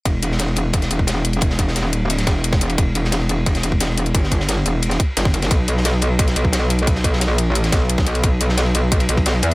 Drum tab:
RD |x-x-xxx-x-xxx-x-|x-x-x-x-x-x-xx-x|x-x-xxx-x-xxx-x-|x-x-x-x-x---x-xx|
HH |x-x-x-x-xxx-x-xx|x-x-x-x-xxx-x-xx|x-x-x-x-xxx-x-xx|x-x-x-x-xxx-x-xx|
SD |---oo----o--o---|-o-oo----oo--o--|---oo----o--o---|-o-oo----o--oo-o|
BD |o-------o--o----|o-o-------o--o--|o-------o--o----|o-o-------o--o--|

RD |x-x-xxx-x-xxx-x-|x-x-x-x-x-x-xx-x|x-x-xxx-xx-xx-x-|
HH |x-x-x-x-xxx-x-xx|x-x-x-x-xxx-x-xx|x-x-x-x-xxx-x-x-|
SD |---oo----o--o---|-o-oo----oo--o--|---oo-------o---|
BD |o-------o--o----|o-o-------o--o--|o-------o--o----|